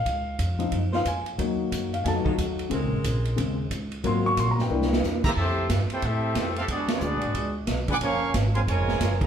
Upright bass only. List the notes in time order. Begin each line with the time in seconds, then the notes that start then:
0.05 C#2
0.39 F2
0.72 F#2
1.05 F2
1.38 D#2
1.72 F#2
2.05 F2
2.38 D#2
2.71 C#2
2.81 A#1
2.92 G#1
3.04 A#1
3.37 D#2
3.71 C#2
4.04 G#1
4.37 A#1
4.70 C2
5.37 F2
5.69 G2
5.90 muted upright bass stroke
6.02 A2
6.35 F2
6.68 E2
7.01 D2
7.13 B1
7.24 G#1
7.34 C#2
7.68 B1
8.01 F#1
8.34 G#1
8.67 F1
9.01 F#1